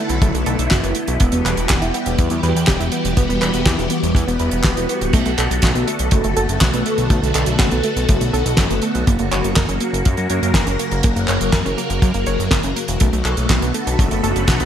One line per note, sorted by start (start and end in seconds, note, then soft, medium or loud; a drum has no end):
0.00 1.16 D3 medium
0.00 1.16 A3 medium
0.00 9.03 B3 medium
0.00 1.18 E4 medium
0.00 1.16 A4 medium
0.09 0.20 B1 medium
0.09 closed hi-hat medium
0.22 0.32 F#1 loud
0.22 0.33 A3 loud
0.22 kick loud
0.22 closed hi-hat loud
0.34 0.44 B1 medium
0.34 0.40 A3 medium
0.34 closed hi-hat medium
0.46 0.57 B1 medium
0.46 0.58 A4 loud
0.46 closed hi-hat medium
0.59 0.69 B1 medium
0.59 closed hi-hat medium
0.71 0.81 F#1 loud
0.71 0.81 F#4 loud
0.71 kick loud
0.71 snare loud
0.71 clap medium
0.71 closed hi-hat loud
0.83 0.93 F#1 medium
0.83 0.94 B3 medium
0.83 closed hi-hat medium
0.95 1.07 A3 medium
0.95 closed hi-hat medium
1.08 1.18 B1 medium
1.08 closed hi-hat medium
1.20 1.30 E1 loud
1.20 5.10 E3 medium
1.20 5.10 G3 medium
1.20 1.31 B3 loud
1.20 12.96 F#4 medium
1.20 5.10 G4 medium
1.20 kick loud
1.20 closed hi-hat loud
1.32 1.43 E1 medium
1.32 1.39 B3 medium
1.32 closed hi-hat medium
1.45 1.55 E1 medium
1.45 1.57 B4 loud
1.45 clap medium
1.45 closed hi-hat medium
1.57 1.67 E1 medium
1.57 closed hi-hat medium
1.69 1.80 E1 loud
1.69 1.80 G4 loud
1.69 kick loud
1.69 snare loud
1.69 clap loud
1.69 closed hi-hat loud
1.82 1.92 E1 medium
1.82 1.92 E4 medium
1.82 closed hi-hat medium
1.94 2.06 B3 medium
1.94 closed hi-hat medium
2.06 2.16 E1 medium
2.06 closed hi-hat medium
2.19 2.29 E2 loud
2.19 2.30 B3 loud
2.19 kick loud
2.19 closed hi-hat loud
2.30 2.41 E2 medium
2.30 2.37 B3 medium
2.30 closed hi-hat medium
2.43 2.53 E2 medium
2.43 2.55 B4 loud
2.43 closed hi-hat medium
2.55 2.65 E2 medium
2.55 closed hi-hat medium
2.67 2.78 E1 loud
2.67 2.78 G4 loud
2.67 kick loud
2.67 snare loud
2.67 clap medium
2.67 closed hi-hat loud
2.80 2.90 E1 medium
2.80 2.90 E4 medium
2.80 closed hi-hat medium
2.92 3.04 B3 medium
2.92 closed hi-hat medium
3.05 3.15 E1 medium
3.05 closed hi-hat medium
3.17 3.27 E1 loud
3.17 3.28 B3 loud
3.17 kick loud
3.17 closed hi-hat loud
3.29 3.39 E1 medium
3.29 3.35 B3 medium
3.29 closed hi-hat medium
3.42 3.52 E1 medium
3.42 3.53 B4 loud
3.42 clap soft
3.42 closed hi-hat medium
3.54 3.64 E1 medium
3.54 closed hi-hat medium
3.66 3.76 E2 loud
3.66 3.77 G4 loud
3.66 kick loud
3.66 snare loud
3.66 clap loud
3.66 closed hi-hat loud
3.78 3.88 E1 medium
3.78 3.89 E4 medium
3.78 closed hi-hat medium
3.90 4.02 B3 medium
3.90 closed hi-hat medium
4.03 4.13 E1 medium
4.03 closed hi-hat medium
4.15 4.25 E2 loud
4.15 4.26 B3 loud
4.15 kick loud
4.15 closed hi-hat loud
4.15 swell medium
4.28 4.38 E1 medium
4.28 4.34 B3 medium
4.28 closed hi-hat medium
4.39 4.50 E1 medium
4.39 4.52 B4 loud
4.39 closed hi-hat medium
4.51 4.62 E1 medium
4.51 closed hi-hat medium
4.63 4.75 E1 loud
4.63 4.75 G4 loud
4.63 kick loud
4.63 snare loud
4.63 clap medium
4.63 closed hi-hat loud
4.77 4.87 E1 medium
4.77 4.87 E4 medium
4.77 closed hi-hat medium
4.89 5.01 B3 medium
4.89 closed hi-hat medium
5.01 5.11 D1 medium
5.01 closed hi-hat medium
5.13 5.24 B1 medium
5.13 9.03 D3 medium
5.13 5.25 A3 loud
5.13 9.03 A3 medium
5.13 9.03 A4 medium
5.13 kick loud
5.13 closed hi-hat loud
5.13 crash medium
5.26 5.36 B1 medium
5.26 5.32 A3 medium
5.26 closed hi-hat medium
5.38 5.48 B1 medium
5.38 5.50 A4 loud
5.38 clap medium
5.38 closed hi-hat medium
5.50 5.61 B1 medium
5.50 closed hi-hat medium
5.62 5.73 B1 loud
5.62 5.73 F#4 loud
5.62 kick loud
5.62 snare loud
5.62 clap loud
5.62 closed hi-hat loud
5.75 5.85 B1 medium
5.75 5.86 B3 medium
5.75 closed hi-hat medium
5.87 5.99 A3 medium
5.87 closed hi-hat medium
5.99 6.10 B1 medium
5.99 closed hi-hat medium
6.11 6.22 F#1 loud
6.11 6.23 A3 loud
6.11 kick loud
6.11 closed hi-hat loud
6.24 6.34 F#1 medium
6.24 6.31 A3 medium
6.24 closed hi-hat medium
6.37 6.47 F#1 medium
6.37 6.48 A4 loud
6.37 closed hi-hat medium
6.49 6.59 F#1 medium
6.49 closed hi-hat medium
6.61 6.71 B1 loud
6.61 6.72 F#4 loud
6.61 kick loud
6.61 snare loud
6.61 clap medium
6.61 closed hi-hat loud
6.73 6.84 B1 medium
6.73 6.84 B3 medium
6.73 closed hi-hat medium
6.86 6.97 A3 medium
6.86 closed hi-hat medium
6.98 7.08 B1 medium
6.98 closed hi-hat medium
7.10 7.20 B1 loud
7.10 7.21 A3 loud
7.10 kick loud
7.10 closed hi-hat loud
7.23 7.33 B1 medium
7.23 7.29 A3 medium
7.23 closed hi-hat medium
7.34 7.45 B1 medium
7.34 7.47 A4 loud
7.34 clap medium
7.34 closed hi-hat medium
7.46 7.57 B1 medium
7.46 closed hi-hat medium
7.59 7.70 F#1 loud
7.59 7.70 F#4 loud
7.59 kick loud
7.59 snare loud
7.59 clap medium
7.59 closed hi-hat loud
7.71 7.82 B1 medium
7.71 7.82 B3 medium
7.71 closed hi-hat medium
7.84 7.96 A3 medium
7.84 closed hi-hat medium
7.96 8.06 B1 medium
7.96 closed hi-hat medium
8.09 8.19 F#1 loud
8.09 8.20 A3 loud
8.09 kick loud
8.09 closed hi-hat loud
8.21 8.31 B1 medium
8.21 8.27 A3 medium
8.21 closed hi-hat medium
8.33 8.43 B1 medium
8.33 8.45 A4 loud
8.33 closed hi-hat medium
8.46 8.56 B1 medium
8.46 closed hi-hat medium
8.57 8.68 F#1 loud
8.57 8.68 F#4 loud
8.57 kick loud
8.57 snare loud
8.57 clap medium
8.57 closed hi-hat loud
8.70 8.80 F#1 medium
8.70 8.81 B3 medium
8.70 closed hi-hat medium
8.82 8.94 A3 medium
8.82 closed hi-hat medium
8.95 9.05 B1 medium
8.95 closed hi-hat medium
9.07 9.17 F#1 loud
9.07 12.97 C#3 medium
9.07 12.97 F#3 medium
9.07 9.18 A#3 loud
9.07 12.97 A#3 medium
9.07 12.97 A#4 medium
9.07 kick loud
9.07 closed hi-hat loud
9.19 9.29 F#1 medium
9.19 9.26 A#3 medium
9.19 closed hi-hat medium
9.32 9.42 F#1 medium
9.32 9.43 C#5 loud
9.32 clap medium
9.32 closed hi-hat medium
9.44 9.54 F#1 medium
9.44 closed hi-hat medium
9.56 9.66 F#1 loud
9.56 9.67 A#4 loud
9.56 kick loud
9.56 snare loud
9.56 clap medium
9.56 closed hi-hat medium
9.69 9.79 F#1 medium
9.69 9.79 C#4 medium
9.69 closed hi-hat medium
9.80 9.93 A#3 medium
9.80 closed hi-hat medium
9.93 10.03 F#1 medium
9.93 closed hi-hat medium
10.05 10.16 F#2 loud
10.05 10.17 A#3 loud
10.05 kick loud
10.05 closed hi-hat loud
10.17 10.28 F#2 medium
10.17 10.24 A#3 medium
10.17 closed hi-hat medium
10.30 10.40 F#2 loud
10.30 10.42 C#5 loud
10.30 closed hi-hat medium
10.42 10.52 F#2 medium
10.42 closed hi-hat medium
10.54 10.64 F#1 loud
10.54 10.65 A#4 loud
10.54 kick loud
10.54 snare loud
10.54 clap medium
10.54 closed hi-hat loud
10.67 10.77 F#1 medium
10.67 10.77 C#4 medium
10.67 closed hi-hat medium
10.79 10.91 A#3 medium
10.79 closed hi-hat medium
10.91 11.02 F#1 medium
10.91 closed hi-hat medium
11.03 11.14 F#1 loud
11.03 11.15 A#3 loud
11.03 kick loud
11.03 closed hi-hat loud
11.16 11.26 F#1 medium
11.16 11.22 A#3 medium
11.16 closed hi-hat medium
11.28 11.38 F#1 medium
11.28 11.40 C#5 loud
11.28 clap medium
11.28 closed hi-hat medium
11.41 11.51 F#1 medium
11.41 closed hi-hat medium
11.53 11.63 F#2 loud
11.53 11.63 A#4 loud
11.53 kick loud
11.53 snare loud
11.53 clap medium
11.53 closed hi-hat loud
11.65 11.75 F#1 medium
11.65 11.76 C#4 medium
11.65 closed hi-hat medium
11.78 11.89 A#3 medium
11.78 closed hi-hat medium
11.90 12.00 F#1 medium
11.90 closed hi-hat medium
12.02 12.12 F#2 loud
12.02 12.13 A#3 loud
12.02 kick loud
12.02 closed hi-hat loud
12.14 12.25 F#1 medium
12.14 12.21 A#3 medium
12.14 closed hi-hat medium
12.26 12.37 F#1 medium
12.26 12.38 C#5 loud
12.26 closed hi-hat medium
12.39 12.49 F#1 medium
12.39 closed hi-hat medium
12.51 12.61 F#1 loud
12.51 12.62 A#4 loud
12.51 kick loud
12.51 snare loud
12.51 clap medium
12.51 closed hi-hat medium
12.63 12.74 F#1 medium
12.63 12.74 C#4 medium
12.63 closed hi-hat medium
12.76 12.88 A#3 medium
12.76 closed hi-hat medium
12.88 12.98 E1 medium
12.88 closed hi-hat medium
13.00 13.11 B1 medium
13.00 14.65 D3 medium
13.00 14.65 A3 medium
13.00 13.12 A3 loud
13.00 14.65 B3 medium
13.00 14.65 F#4 medium
13.00 14.65 A4 medium
13.00 kick loud
13.00 closed hi-hat loud
13.13 13.23 B1 medium
13.13 13.19 A3 medium
13.13 closed hi-hat soft
13.24 13.35 B1 medium
13.24 13.37 A4 loud
13.24 clap medium
13.24 closed hi-hat medium
13.37 13.48 B1 medium
13.37 closed hi-hat medium
13.49 13.60 B1 loud
13.49 13.60 F#4 loud
13.49 kick loud
13.49 snare loud
13.49 clap medium
13.49 closed hi-hat loud
13.62 13.72 B1 medium
13.62 13.72 B3 medium
13.62 closed hi-hat medium
13.74 13.86 A3 medium
13.74 closed hi-hat medium
13.87 13.97 B1 medium
13.87 closed hi-hat medium
13.99 14.09 F#1 loud
13.99 14.10 A3 loud
13.99 kick loud
13.99 closed hi-hat medium
14.11 14.21 F#1 medium
14.11 14.17 A3 medium
14.11 closed hi-hat medium
14.24 14.34 F#1 medium
14.24 14.35 A4 loud
14.24 closed hi-hat medium
14.36 14.46 F#1 medium
14.36 closed hi-hat medium
14.48 14.58 B1 loud
14.48 14.58 F#4 loud
14.48 kick loud
14.48 snare loud
14.48 clap medium
14.48 closed hi-hat medium
14.60 14.65 B1 medium
14.60 14.65 B3 medium
14.60 closed hi-hat medium